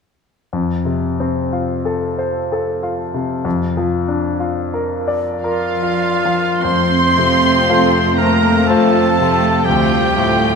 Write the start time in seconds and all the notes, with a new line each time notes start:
0.53 F2
0.85 C3
1.20 C4
1.53 F4
1.85 A4
2.19 C5
2.52 A4
2.83 F4
3.14 C3
3.45 F2
3.77 F3
4.08 D4
4.40 F4
4.74 A#4
5.08 D5
5.43 F3 F4 A#4 F5
5.83 F4
6.25 F3
6.63 F2 A3 C4 C5 C6
7.16 C3 F3 A3 C4 F4
7.69 F2 A3 F4 C5
8.17 F3 A3 A#3 C4 F4 A#4 A#5
8.67 F2 A3 F4 A4 C5 A5
9.17 C3 F3 A3 C4 F4
9.65 D2 F3 G3 A3 C4 F4 G4 G5
9.69 D2
10.16 A2 F3 A3 C4 F4